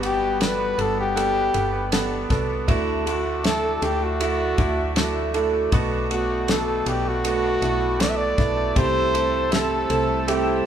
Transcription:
Already playing: G1 G2 G3 B3 D4 F#4 G4 F#5 B5 D6
0.02 B3 D4 G4 F#5, ride
0.21 B3
0.39 B3 D4 F#4 A4 B4, snare, ride
0.60 B3
0.77 G1 B3 D4 F#4 A4, ride
0.97 B3 G4
1.15 G3 B3 D4 A4 F#5, ride
1.35 D4
1.54 G1 B3 D4 A4 F#5, ride
1.73 B3
1.92 B3 D4 A4 F#5, snare, ride
2.11 B3
2.30 C2 B3 D4 F#4 A4, kick, snare, ride
2.49 B3
2.67 D2 D3 A3 D4 E4 F#4 E5 A5, kick, ride
2.87 D4
3.05 A3 D4 E4 F#4, ride
3.25 A3
3.43 A3 D4 E4 F#4 A4, snare, ride
3.63 A3
3.82 D2 A3 D4 E4 F#4 G4, ride
4.02 A3 F#4
4.20 D3 A3 D4 E4 F#4, ride
4.39 D4
4.58 D2 A3 D4 E4 F#4, kick, ride
4.78 A3
4.96 A3 D4 E4 F#4, snare, ride
5.16 A3
5.34 A3 D4 E4 A4, ride
5.53 A3
5.72 B1 B2 A3 B3 D4 F#4 B4 A5, kick, ride
5.92 D4
6.10 A3 B3 D4 F#4, ride
6.30 A3
6.48 A3 B3 D4 A4, snare, ride
6.68 A3
6.86 B1 A3 B3 D4 F#4 G4, ride
7.06 A3 F#4
7.24 B2 A3 B3 D4 F#4, ride
7.43 D4
7.62 B1 A3 B3 D4 E4 F#4, ride
7.81 A3
7.99 A3 B3 D4 A4 D5, snare, ride
8.09 E5
8.16 A3 D5
8.38 B1 A3 B3 D4 E4, kick, snare, ride
8.57 A3
8.76 C2 C3 G3 A3 C4 E4 G4 C5 E6, kick, ride
8.95 E4
9.13 A3 C4 E4 G4, ride
9.32 A3
9.51 A3 C4 E4 G4 A4, snare, ride
9.71 A3
9.89 C2 A3 C4 E4 A4, ride
10.09 A3
10.27 C3 A3 C4 E4 G4, ride
10.47 E4

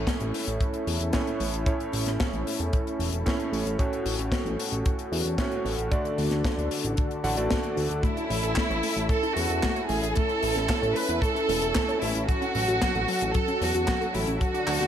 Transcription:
Already playing: A2 A3 C#4 E4 A4 C#5
0.07 kick, snare, closed hi-hat
0.20 A1, closed hi-hat
0.34 open hi-hat
0.47 A1, closed hi-hat
0.61 kick, closed hi-hat
0.74 closed hi-hat
0.87 E2, open hi-hat
1.00 E2, closed hi-hat
1.13 A2 A3 C#4 E4 C#5, kick, snare, closed hi-hat
1.27 closed hi-hat
1.40 A1, open hi-hat
1.53 A1, closed hi-hat
1.66 A2 A3 C#4 E4 C#5, kick, closed hi-hat
1.80 closed hi-hat
1.93 A1, open hi-hat
2.06 A1, snare, closed hi-hat
2.20 kick, snare, closed hi-hat
2.33 A1, closed hi-hat
2.47 open hi-hat
2.60 E2, closed hi-hat
2.73 kick, closed hi-hat
2.87 closed hi-hat
2.99 E1, open hi-hat
3.13 E1, closed hi-hat
3.26 A2 A3 C#4 E4 C#5, kick, snare, closed hi-hat
3.40 closed hi-hat
3.52 A1, open hi-hat
3.66 A1, closed hi-hat
3.79 A2 A3 C#4 F#4 A4 C#5, kick, closed hi-hat
3.93 closed hi-hat
4.06 A1, open hi-hat
4.19 A1, closed hi-hat
4.32 kick, snare, closed hi-hat
4.46 A1, closed hi-hat
4.60 open hi-hat
4.72 A1, closed hi-hat
4.86 kick, closed hi-hat
4.99 closed hi-hat
5.12 E2, open hi-hat
5.25 E2, closed hi-hat
5.38 A2 A3 C#4 F#4 C#5, kick, snare, closed hi-hat
5.51 closed hi-hat
5.65 A1, open hi-hat
5.78 A1, closed hi-hat
5.91 D3 A3 D4 F#4 D5, kick, closed hi-hat
6.05 closed hi-hat
6.18 D2, open hi-hat
6.31 D2, snare, closed hi-hat
6.45 kick, snare, closed hi-hat
6.58 D2, closed hi-hat
6.71 open hi-hat
6.84 A1, closed hi-hat
6.97 kick, closed hi-hat
7.11 closed hi-hat
7.24 A1 D3 A3 D4 F#4 F#5, open hi-hat
7.37 A1 D3 A3 D4 F#4 D5, closed hi-hat
7.51 kick, snare, closed hi-hat
7.63 closed hi-hat
7.77 D2, open hi-hat
7.90 D2, closed hi-hat
8.03 A3 C#4 E4, kick, closed hi-hat
8.17 E4, closed hi-hat
8.30 A1 A3, open hi-hat
8.43 A1 A4, closed hi-hat
8.56 A3, kick, snare, clap, closed hi-hat
8.70 A1 C#5, closed hi-hat
8.83 A3, open hi-hat
8.97 A1 E4, closed hi-hat
9.09 A3 A4, kick, closed hi-hat
9.23 E4, closed hi-hat
9.36 E2 A3 F#4, open hi-hat
9.50 E2 A4, closed hi-hat
9.63 A3, kick, snare, clap, closed hi-hat
9.76 C#5, closed hi-hat
9.89 A1 A3 G#4, open hi-hat
10.03 A1 E4, closed hi-hat
10.15 A3 A4, kick, closed hi-hat
10.29 E4, closed hi-hat
10.43 A1 A3, open hi-hat
10.56 A1 A4, snare, closed hi-hat
10.69 A3, kick, snare, clap, closed hi-hat
10.82 A1 C#5, closed hi-hat
10.95 A3 B4, open hi-hat
11.09 E2 E4, closed hi-hat
11.22 A3 A4, kick, closed hi-hat
11.35 E4, closed hi-hat
11.49 E1 A3, open hi-hat
11.62 E1 A4, closed hi-hat
11.75 A3, kick, snare, clap, closed hi-hat
11.89 C#5, closed hi-hat
12.02 A1 A3 E4, open hi-hat
12.15 A1 E4, closed hi-hat
12.28 F#3 F#4 A4, kick, closed hi-hat
12.42 C#4, closed hi-hat
12.55 A1 F#3, open hi-hat
12.68 A1 F#4, closed hi-hat
12.81 F#3, kick, snare, clap, closed hi-hat
12.95 A1 A4, closed hi-hat
13.08 F#3, open hi-hat
13.21 A1 C#4, closed hi-hat
13.34 F#3 A4, kick, closed hi-hat
13.48 C#4, closed hi-hat
13.61 E2 F#3 F#4, open hi-hat
13.74 E2 F#4, closed hi-hat
13.88 F#3, kick, snare, clap, closed hi-hat
14.01 A4, closed hi-hat
14.14 A1 F#3 E4, open hi-hat
14.27 A1 C#4, closed hi-hat
14.41 D3 F#3 D4 F#4, kick, closed hi-hat
14.54 D4, closed hi-hat
14.67 D2 F#3, clap, open hi-hat
14.81 D2 F#4, snare, closed hi-hat

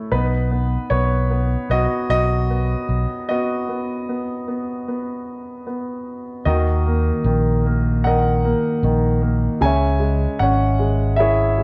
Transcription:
Already playing: A3 E4 C#5
0.12 B1 B3 D#4 B4
0.52 B3
0.90 B1 B3 C#5
1.31 B3
1.70 B1 B3 F#4 D#5
2.10 B1 F#4 D#5
2.50 B3
2.89 B1
3.29 B3 F#4 D#5
3.69 B3
4.09 B3
4.48 B3
4.88 B3
5.67 B3
6.45 D#2 D#3 F#4 A#4 D#5
6.86 A#3
7.24 A#1 D#3
7.66 A#3
8.04 D#3 A#4 D#5 F#5
8.44 A#3
8.83 A#1 D#3
9.22 A#3
9.61 C#2 C#3 C#5 G#5
9.65 E5
10.00 G#3
10.39 G#1 C#4 C#5 F#5
10.79 G#3
11.16 E4 G#4 C#5 E5
11.58 G#3

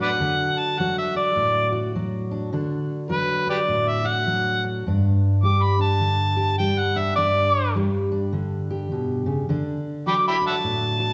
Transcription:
Already playing: A2 D3 F#3 A3 D4 F#4
0.02 B4 D5 F#5
0.20 D3 D4
0.59 A5
0.79 F#3 F#4 F#5
0.98 E5
1.15 D4 D5
1.36 A2
1.72 F#4
1.95 F#3
2.31 D4
2.53 D3 D4
3.09 F#3 F#4 B4
3.47 D4 G4 B4 D5
3.68 A2
3.88 E5
4.04 F#4 F#5
4.26 F#3
4.64 D4
4.87 G2 D4
5.43 G3 G4 D6
5.63 B5
5.79 D4 A5
6.00 D3
6.36 G4
6.59 G3 G5
6.79 F#5
6.96 D4 E5
7.16 G2 D4 D5
7.76 G3 G4
8.12 D4
8.33 D3
8.70 G4
8.92 B2
9.26 C#3
9.49 D3 D4
10.06 F#3 F#4 G5 B5 D6
10.28 E5 G5 B5
10.42 D4
10.47 E5 F#5 A5
10.64 A2
11.00 F#4

